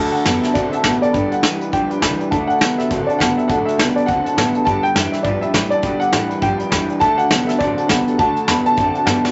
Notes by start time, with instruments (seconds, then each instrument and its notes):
Already playing: upright bass D2, steel-string acoustic guitar D3 A3 D4 F#4 A4, clean electric guitar D3 A3, upright piano A5
0.12 steel-string acoustic guitar D4 F#4 A4, upright piano D5 F#5 A5, muted upright bass stroke, closed hi-hat
0.23 upright bass F#2, clean electric guitar D3 B3, steel-string acoustic guitar A3 D4 F#4 A4, upright piano D5 F#5, snare, closed hi-hat
0.27 upright piano A5
0.42 steel-string acoustic guitar D4 F#4 A4, upright piano D5 E5 F#5 A5, snare, closed hi-hat
0.53 upright bass B2, steel-string acoustic guitar D3 A3 D4 F#4 A4, clean electric guitar D3 C4, upright piano D5 F#5 A5, kick, closed hi-hat
0.72 steel-string acoustic guitar D4 F#4 A4, upright piano D5 E5 F#5 A5, muted upright bass stroke, closed hi-hat
0.83 upright bass A2, clean electric guitar D3 B3, steel-string acoustic guitar A3 D4 F#4 A4, upright piano D5 F#5 A5, kick, snare, closed hi-hat
1.01 steel-string acoustic guitar F#4 A4, upright piano D5 F#5 A5, muted upright bass stroke, closed hi-hat
1.05 steel-string acoustic guitar D4
1.12 upright bass G2, clean electric guitar G2 D3, steel-string acoustic guitar G3 D4 G4 B4, upright piano D5 G5 B5, kick, closed hi-hat
1.32 steel-string acoustic guitar D4 G4 B4, upright piano D5 F#5 G5 B5, closed hi-hat
1.41 upright bass E2, clean electric guitar G2 E3, steel-string acoustic guitar G3 D4 G4 B4, upright piano D5 G5 B5, snare, closed hi-hat
1.60 steel-string acoustic guitar D4 G4 B4, upright piano D5 G5 B5, muted upright bass stroke, closed hi-hat
1.72 upright bass D2, clean electric guitar G2 F3, steel-string acoustic guitar G3 D4 G4 B4, upright piano D5 G5 D6, kick, closed hi-hat
1.90 steel-string acoustic guitar D4 G4 B4, upright piano D5 G5 B5, muted upright bass stroke, closed hi-hat
2.00 upright bass C2, clean electric guitar G2 E3, steel-string acoustic guitar G3 D4 G4 B4, upright piano D5 G5 B5, kick, snare, closed hi-hat
2.18 steel-string acoustic guitar D4 G4 B4, upright piano D5 G5 B5, muted upright bass stroke, closed hi-hat
2.30 upright bass D2, steel-string acoustic guitar D3 A3 D4 F#4 A4, clean electric guitar D3 A3, upright piano D5 F#5 A5, kick, closed hi-hat
2.47 steel-string acoustic guitar D4 F#4 A4, upright piano D5 F#5 A5, muted upright bass stroke, closed hi-hat
2.59 upright bass A1, clean electric guitar D3 B3, steel-string acoustic guitar A3 D4, upright piano D5 F#5, snare, closed hi-hat
2.77 steel-string acoustic guitar D4 F#4 A4, upright piano D5 E5 F#5 B5, muted upright bass stroke, snare, closed hi-hat
2.89 upright bass F#1, steel-string acoustic guitar D3 A3 D4 F#4 A4, clean electric guitar D3 C4, upright piano D5 F#5 A5, kick, closed hi-hat
3.06 steel-string acoustic guitar D4 F#4 A4, upright piano D5 F#5 A5, muted upright bass stroke, closed hi-hat
3.18 upright bass G1, clean electric guitar D3 B3, steel-string acoustic guitar A3 D4 F#4 A4, upright piano D5 F#5 A5, kick, snare, closed hi-hat
3.36 steel-string acoustic guitar D4 F#4 A4, upright piano D5 E5 A5, muted upright bass stroke, closed hi-hat
3.47 upright bass A1, steel-string acoustic guitar D3 A3 D4 F#4 A4, clean electric guitar D3 A3, upright piano D5 F#5 A5, kick, closed hi-hat
3.65 steel-string acoustic guitar F#4 A4, upright piano D5 E5 F#5 A5, closed hi-hat
3.70 steel-string acoustic guitar D4
3.77 upright bass C2, clean electric guitar D3 B3, steel-string acoustic guitar A3 D4 F#4 A4, upright piano D5 F#5 A5, snare, closed hi-hat
3.94 steel-string acoustic guitar D4 F#4 A4, upright piano D5 F#5 A5, muted upright bass stroke, closed hi-hat
4.06 upright bass D2, steel-string acoustic guitar D3 A3 D4 F#4 A4, clean electric guitar D3 C4, upright piano D5 F#5 A5, kick, closed hi-hat
4.24 steel-string acoustic guitar D4 F#4 A4, upright piano D5 F#5 A5, closed hi-hat
4.36 upright bass A2, clean electric guitar D3 B3, steel-string acoustic guitar A3 D4 F#4, upright piano D5 F#5 A5, snare, closed hi-hat
4.53 steel-string acoustic guitar D4 F#4 A4, upright piano D5 F#5 A5, closed hi-hat
4.64 upright bass G2, clean electric guitar G2 D3, steel-string acoustic guitar G3 D4 G4 B4, upright piano D5 G5 A5 B5, kick, closed hi-hat
4.82 steel-string acoustic guitar G4 B4, upright piano D5 G5 B5, closed hi-hat
4.94 upright bass F#2, clean electric guitar G2 E3, steel-string acoustic guitar G3 D4 G4 B4, upright piano D5 G5, snare, closed hi-hat
5.12 steel-string acoustic guitar D4 G4 B4, upright piano D5 E5 G5 B5, snare, closed hi-hat
5.23 clean electric guitar G2 F3, upright bass G2, steel-string acoustic guitar G3 D4 G4 B4, upright piano D5 G5 B5, kick, closed hi-hat
5.41 steel-string acoustic guitar D4 G4 B4, upright piano D5 E5 G5 B5, closed hi-hat
5.53 clean electric guitar G2 E3, upright bass A2, steel-string acoustic guitar G3 D4 G4 B4, upright piano D5 G5 B5, kick, snare, closed hi-hat
5.70 steel-string acoustic guitar G4 B4, upright piano D5 G5 A5, muted upright bass stroke, closed hi-hat
5.75 steel-string acoustic guitar D4
5.82 clean electric guitar G2 D3, upright bass B2, steel-string acoustic guitar G3 D4 G4 B4, upright piano D5 G5 B5, kick, closed hi-hat
6.00 steel-string acoustic guitar D4 G4 B4, upright piano D5 F#5 G5 D6, muted upright bass stroke, closed hi-hat
6.11 clean electric guitar G2 E3, upright bass A2, steel-string acoustic guitar G3 D4 G4, upright piano D5 G5 B5, snare, closed hi-hat
6.16 steel-string acoustic guitar B4
6.28 steel-string acoustic guitar G4 B4, upright piano D5 G5 B5, muted upright bass stroke, closed hi-hat
6.33 steel-string acoustic guitar D4
6.41 clean electric guitar G2 F3, upright bass G2, steel-string acoustic guitar G3 D4 G4 B4, upright piano D5 G5 B5, kick, closed hi-hat
6.58 steel-string acoustic guitar B4, upright piano D5 G5 B5, muted upright bass stroke, closed hi-hat
6.62 steel-string acoustic guitar D4 G4
6.69 upright bass E2, clean electric guitar G2 E3, steel-string acoustic guitar G3 D4 G4, upright piano D5 G5 B5, kick, snare, closed hi-hat
6.74 steel-string acoustic guitar B4
6.88 steel-string acoustic guitar D4 G4 B4, upright piano D5 G5 B5, muted upright bass stroke, closed hi-hat
6.99 upright bass D2, steel-string acoustic guitar D3 A3 D4 F#4 A4, clean electric guitar D3 A3, upright piano D5 F#5 A5, kick, closed hi-hat
7.18 steel-string acoustic guitar D4 F#4 A4, upright piano D5 F#5 A5, muted upright bass stroke, closed hi-hat
7.28 upright bass B1, clean electric guitar D3 B3, steel-string acoustic guitar A3 D4, upright piano D5 F#5, snare, closed hi-hat
7.45 steel-string acoustic guitar D4 F#4 A4, upright piano D5 E5 F#5 A5, muted upright bass stroke, snare, closed hi-hat
7.58 upright bass A1, steel-string acoustic guitar D3 A3 D4 F#4 A4, clean electric guitar D3 C4, upright piano D5 F#5 A5, kick, closed hi-hat
7.76 steel-string acoustic guitar D4 F#4 A4, upright piano D5 F#5 A5, muted upright bass stroke, closed hi-hat
7.88 upright bass C2, clean electric guitar D3 B3, steel-string acoustic guitar A3 D4 F#4 A4, upright piano D5 F#5 B5, kick, snare, closed hi-hat
8.06 steel-string acoustic guitar D4 F#4 A4, upright piano D5 F#5 A5, closed hi-hat
8.17 upright bass D2, clean electric guitar D3 A3, steel-string acoustic guitar D3 A3 D4 F#4 A4, upright piano D5 F#5 A5, kick, closed hi-hat
8.36 steel-string acoustic guitar D4 F#4 A4, upright piano D5 F#5 A5, closed hi-hat
8.47 upright bass E2, clean electric guitar D3 B3, steel-string acoustic guitar A3 D4 F#4 A4, upright piano D5 F#5 A5 B5, snare, closed hi-hat
8.64 steel-string acoustic guitar F#4 A4, upright piano D5 F#5 A5, muted upright bass stroke, closed hi-hat
8.69 steel-string acoustic guitar D4
8.75 upright bass F#2, steel-string acoustic guitar D3 A3 D4 F#4 A4, clean electric guitar D3 C4, upright piano D5 F#5 A5, kick, closed hi-hat
8.94 steel-string acoustic guitar D4 F#4 A4, upright piano D5 F#5 A5, closed hi-hat
9.05 upright bass G2, clean electric guitar D3 B3, steel-string acoustic guitar A3 D4 F#4, upright piano D5 F#5 A5, snare, closed hi-hat
9.23 steel-string acoustic guitar F#4 A4, upright piano D5 F#5 A5, muted upright bass stroke, snare
9.27 steel-string acoustic guitar D4